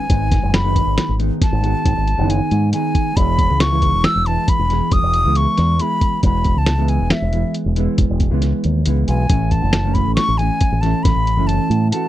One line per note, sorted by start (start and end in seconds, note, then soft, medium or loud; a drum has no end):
0.00 0.56 G#5 medium
0.09 0.41 G#1 medium
0.09 0.58 D#3 medium
0.09 0.58 G#3 medium
0.09 0.59 B3 medium
0.09 0.59 D#4 medium
0.09 kick loud
0.09 closed hi-hat medium
0.31 kick medium
0.31 snare soft
0.31 closed hi-hat medium
0.43 0.85 F#1 medium
0.54 1.15 B5 medium
0.54 snare loud
0.54 closed hi-hat medium
0.64 1.13 D#3 medium
0.64 1.13 G#3 medium
0.64 1.13 B3 medium
0.64 1.14 D#4 medium
0.76 kick medium
0.76 closed hi-hat medium
0.86 0.97 G#1 medium
0.98 snare medium
0.98 closed hi-hat medium
1.09 1.30 G#1 medium
1.18 1.58 D#3 medium
1.18 1.58 G#3 medium
1.18 1.58 B3 medium
1.18 1.59 D#4 medium
1.18 closed hi-hat medium
1.42 2.32 A5 medium
1.42 kick loud
1.42 snare soft
1.42 closed hi-hat medium
1.53 1.73 G#1 medium
1.62 2.11 D#3 medium
1.62 2.12 G#3 medium
1.62 2.12 B3 medium
1.62 2.12 F#4 medium
1.62 closed hi-hat medium
1.85 1.96 G#1 medium
1.85 kick medium
1.85 closed hi-hat medium
1.97 2.17 G#1 medium
2.08 closed hi-hat medium
2.17 2.39 F#1 medium
2.17 2.66 D#3 medium
2.17 2.66 G#3 medium
2.17 2.67 B3 medium
2.17 2.67 D#4 medium
2.30 2.73 G#5 medium
2.30 closed hi-hat medium
2.51 2.72 G#2 medium
2.51 closed hi-hat medium
2.72 3.11 D#3 medium
2.72 3.12 G#3 medium
2.72 3.12 B3 medium
2.72 3.12 D#4 medium
2.72 3.18 G#5 medium
2.72 closed hi-hat medium
2.95 kick medium
2.95 closed hi-hat medium
3.16 3.48 E1 medium
3.16 3.65 E3 medium
3.16 3.65 G#3 medium
3.16 3.66 B3 medium
3.16 3.66 E4 medium
3.16 3.62 B5 loud
3.16 kick loud
3.16 closed hi-hat medium
3.39 kick medium
3.39 closed hi-hat medium
3.50 3.91 C#2 medium
3.60 4.06 C#6 medium
3.60 snare loud
3.60 closed hi-hat medium
3.70 4.19 E3 medium
3.70 4.20 G#3 medium
3.70 4.20 B3 medium
3.70 4.20 E4 medium
3.82 kick medium
3.82 closed hi-hat medium
3.94 4.04 E1 medium
4.04 4.28 E6 loud
4.04 snare medium
4.04 closed hi-hat medium
4.15 4.36 E1 medium
4.26 4.65 E3 medium
4.26 4.65 G#3 medium
4.26 4.65 B3 medium
4.26 4.66 E4 medium
4.26 4.51 A5 medium
4.26 closed hi-hat medium
4.48 4.94 B5 medium
4.48 kick loud
4.48 closed hi-hat medium
4.59 4.80 E1 medium
4.69 5.18 E3 medium
4.69 5.18 G#3 medium
4.69 5.18 B3 medium
4.69 5.19 E4 medium
4.69 snare soft
4.69 closed hi-hat medium
4.91 5.02 E1 medium
4.91 5.38 D#6 medium
4.91 kick loud
4.91 closed hi-hat medium
5.03 5.23 E1 medium
5.13 closed hi-hat medium
5.24 5.46 C#2 medium
5.24 5.73 E3 medium
5.24 5.73 G#3 medium
5.24 5.73 B3 medium
5.24 5.74 E4 medium
5.35 5.83 C#6 medium
5.35 closed hi-hat medium
5.58 5.79 E2 medium
5.58 snare soft
5.58 closed hi-hat medium
5.79 6.18 E3 medium
5.79 6.18 G#3 medium
5.79 6.18 B3 medium
5.79 6.19 E4 medium
5.79 6.24 B5 medium
5.79 closed hi-hat medium
6.01 kick medium
6.01 closed hi-hat medium
6.22 6.54 E1 medium
6.22 6.71 E3 medium
6.22 6.71 G#3 medium
6.22 6.72 B3 medium
6.22 6.72 E4 medium
6.22 6.60 B5 medium
6.22 kick loud
6.22 closed hi-hat medium
6.44 kick medium
6.44 closed hi-hat medium
6.56 6.98 C#2 medium
6.56 6.91 A5 medium
6.66 snare medium
6.66 closed hi-hat medium
6.77 7.26 E3 medium
6.77 7.26 G#3 medium
6.77 7.27 B3 medium
6.77 7.27 E4 medium
6.88 7.13 G#5 medium
6.88 closed hi-hat medium
7.00 7.10 E1 medium
7.10 7.55 E5 medium
7.10 snare medium
7.10 closed hi-hat medium
7.22 7.43 E1 medium
7.32 7.71 E3 medium
7.32 7.72 G#3 medium
7.32 7.72 B3 medium
7.32 7.72 E4 medium
7.32 closed hi-hat medium
7.54 closed hi-hat medium
7.66 7.86 E1 medium
7.76 8.25 E3 medium
7.76 8.25 G#3 medium
7.76 8.25 B3 medium
7.76 8.25 E4 medium
7.76 closed hi-hat medium
7.98 8.09 E1 medium
7.98 kick loud
7.98 closed hi-hat medium
8.10 8.30 E1 medium
8.20 kick medium
8.20 closed hi-hat medium
8.31 8.52 C#2 medium
8.31 8.79 E3 medium
8.31 8.80 G#3 medium
8.31 8.80 B3 medium
8.31 8.80 E4 medium
8.42 snare soft
8.42 closed hi-hat medium
8.64 8.84 D#2 medium
8.64 closed hi-hat medium
8.85 9.06 C#2 medium
8.85 9.24 E3 medium
8.85 9.24 G#3 medium
8.85 9.25 B3 medium
8.85 9.25 E4 medium
8.85 closed hi-hat medium
9.08 9.28 B1 medium
9.08 9.53 G#5 medium
9.08 closed hi-hat medium
9.29 9.61 A1 medium
9.29 9.78 E3 medium
9.29 9.78 A3 medium
9.29 9.78 C#4 medium
9.29 9.79 E4 medium
9.29 kick loud
9.29 closed hi-hat medium
9.51 9.96 A5 medium
9.51 kick medium
9.51 closed hi-hat medium
9.62 10.04 F#1 medium
9.73 snare loud
9.73 closed hi-hat medium
9.84 10.32 E3 medium
9.84 10.33 A3 medium
9.84 10.33 C#4 medium
9.84 10.33 E4 medium
9.94 10.14 B5 medium
9.94 kick medium
9.94 closed hi-hat medium
10.07 10.17 A1 medium
10.15 10.39 C#6 loud
10.15 snare medium
10.15 closed hi-hat medium
10.28 10.49 A1 medium
10.38 10.77 E3 medium
10.38 10.78 A3 medium
10.38 10.78 C#4 medium
10.38 10.78 E4 medium
10.38 10.83 G#5 medium
10.38 closed hi-hat medium
10.61 kick loud
10.61 closed hi-hat medium
10.72 10.93 A1 medium
10.81 11.31 E3 medium
10.81 11.31 A3 medium
10.81 11.32 C#4 medium
10.81 11.32 E4 medium
10.81 11.05 A5 medium
10.81 snare soft
10.81 closed hi-hat medium
11.03 11.15 A1 medium
11.03 11.49 B5 medium
11.03 kick loud
11.03 snare soft
11.03 closed hi-hat medium
11.16 11.37 A1 medium
11.27 closed hi-hat medium
11.36 11.58 F#1 medium
11.36 11.86 E3 medium
11.36 11.86 A3 medium
11.36 11.86 C#4 medium
11.36 11.86 E4 medium
11.47 11.91 A5 medium
11.47 closed hi-hat medium
11.70 11.91 A2 medium
11.70 closed hi-hat medium
11.91 12.08 E3 medium
11.91 12.08 A3 medium
11.91 12.08 C#4 medium
11.91 12.08 F#4 medium
11.91 12.08 A5 medium
11.91 closed hi-hat medium